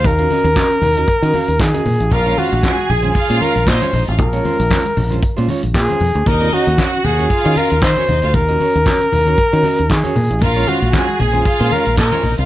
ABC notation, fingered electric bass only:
X:1
M:4/4
L:1/16
Q:"Swing 16ths" 1/4=116
K:Ebdor
V:1 name="Fingered electric bass" clef=bass
E,,2 z E,, z2 E,,2 z E, z E,, E, z B,, =A,,, | B,,,2 z B,,, z2 B,,,2 z B,, z B,,, B,, z B,,, =A,,, | B,,,2 z B,,, z2 B,,,2 z B,, z B,,, B,, z F,, =D,, | E,,2 z E,, z2 E,,2 z E, z E,, E, z E,, =D,, |
E,,2 z E,, z2 E,,2 z E, z E,, E, z B,, =A,,, | B,,,2 z B,,, z2 B,,,2 z B,, z B,,, B,, z B,,, C,, |]